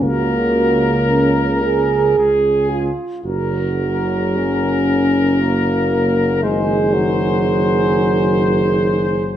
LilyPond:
<<
  \new Staff \with { instrumentName = "Trumpet section" } { \time 3/4 \key fis \major \tempo 4 = 58 ais'2 gis'8 r8 | ais'2. | bis'2. | }
  \new Staff \with { instrumentName = "French horn section" } { \time 3/4 \key fis \major fis'4 cis'8 gis'4 eis'8 | fis'2. | gis'2. | }
  \new Staff \with { instrumentName = "Euphonium" } { \time 3/4 \key fis \major ais2 r4 | r8 fis8 cis'4 ais4 | gis8 fis2~ fis8 | }
  \new Staff \with { instrumentName = "Trombone" } { \clef bass \time 3/4 \key fis \major cis2 cis8 r8 | cis2. | dis2. | }
  \new Staff \with { instrumentName = "Tuba" } { \clef bass \time 3/4 \key fis \major cis,2 cis,8 r8 | fis,,2.~ | fis,,2. | }
>>